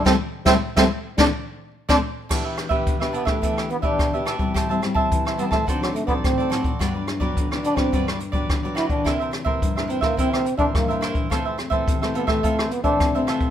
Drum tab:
CC |----------------|x---------------|----------------|----------------|
HH |----------------|--xxxxxxxxxxxxxx|xxx-xxxxxxxxxxxx|x-xxxxxxxxxxxxxx|
SD |o--o-o--o----o--|r-r--r-r-r--r-r-|r-r--r-r-r--r-r-|r-r--r-r-r--r-r-|
BD |o--o-o--o----o--|o--oo--oo--oo--o|o--oo--oo--oo--o|o--oo--oo--oo--o|

CC |----------------|----------------|
HH |xxx-xxxxxxxxxxxx|x-xxxxxxxxxxxxxx|
SD |r-r--r-r-r--r-r-|r-r--r-r-r--r-r-|
BD |o--oo--oo--oo--o|o--oo--oo--oo--o|